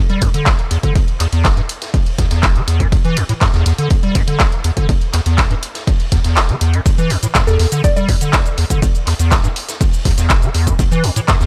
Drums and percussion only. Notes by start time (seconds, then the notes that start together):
0.10 closed hi-hat
0.21 kick, closed hi-hat
0.34 closed hi-hat
0.46 kick, snare, clap, closed hi-hat
0.59 closed hi-hat
0.71 closed hi-hat
0.83 kick, closed hi-hat
0.95 kick, closed hi-hat
1.08 closed hi-hat
1.20 snare, clap, closed hi-hat
1.32 closed hi-hat
1.45 kick, snare, clap, closed hi-hat
1.57 closed hi-hat
1.69 closed hi-hat
1.82 snare, closed hi-hat
1.94 kick, closed hi-hat, open hi-hat
2.06 closed hi-hat
2.18 kick, snare, closed hi-hat
2.31 snare, closed hi-hat
2.43 kick, snare, clap, closed hi-hat
2.56 closed hi-hat
2.68 closed hi-hat
2.80 kick, closed hi-hat
2.92 kick, closed hi-hat
3.05 closed hi-hat
3.17 closed hi-hat
3.29 closed hi-hat
3.41 kick, snare, clap, closed hi-hat
3.53 snare, closed hi-hat
3.66 snare, closed hi-hat
3.78 closed hi-hat
3.90 kick, closed hi-hat
4.03 closed hi-hat
4.15 kick, closed hi-hat
4.28 closed hi-hat
4.40 kick, snare, clap, closed hi-hat
4.52 closed hi-hat
4.64 closed hi-hat
4.77 kick, closed hi-hat
4.89 kick, closed hi-hat
5.01 closed hi-hat
5.13 snare, clap, closed hi-hat
5.26 closed hi-hat
5.38 kick, snare, clap, closed hi-hat
5.51 closed hi-hat
5.63 closed hi-hat
5.75 snare, closed hi-hat
5.87 kick, closed hi-hat, open hi-hat
6.00 closed hi-hat
6.12 kick, snare, closed hi-hat
6.24 snare, closed hi-hat
6.36 snare, clap, closed hi-hat
6.49 closed hi-hat
6.61 closed hi-hat
6.74 closed hi-hat
6.86 kick, closed hi-hat, shaker
6.98 closed hi-hat, shaker
7.10 closed hi-hat, open hi-hat
7.23 closed hi-hat, shaker
7.35 kick, snare, clap, closed hi-hat, shaker
7.47 snare, closed hi-hat, shaker
7.59 snare, closed hi-hat, open hi-hat
7.72 closed hi-hat, shaker
7.84 kick, closed hi-hat, shaker
7.96 closed hi-hat, shaker
8.08 kick, closed hi-hat, open hi-hat
8.21 closed hi-hat, shaker
8.33 kick, snare, clap, closed hi-hat, shaker
8.46 closed hi-hat, shaker
8.57 closed hi-hat, open hi-hat
8.70 kick, closed hi-hat, shaker
8.82 kick, closed hi-hat, shaker
8.95 closed hi-hat, shaker
9.07 snare, clap, closed hi-hat, open hi-hat
9.19 closed hi-hat, shaker
9.31 kick, snare, clap, closed hi-hat, shaker
9.44 closed hi-hat, shaker
9.56 closed hi-hat, open hi-hat
9.68 snare, closed hi-hat, shaker
9.81 kick, closed hi-hat, open hi-hat, shaker
9.93 closed hi-hat, shaker
10.05 kick, snare, closed hi-hat, open hi-hat
10.18 snare, closed hi-hat, shaker
10.30 kick, snare, clap, closed hi-hat, shaker
10.42 closed hi-hat, shaker
10.54 closed hi-hat, open hi-hat
10.67 kick, closed hi-hat, shaker
10.79 kick, closed hi-hat, shaker
10.92 closed hi-hat, shaker
11.04 closed hi-hat, open hi-hat
11.16 closed hi-hat, shaker
11.28 kick, snare, clap, closed hi-hat, shaker
11.41 snare, closed hi-hat, shaker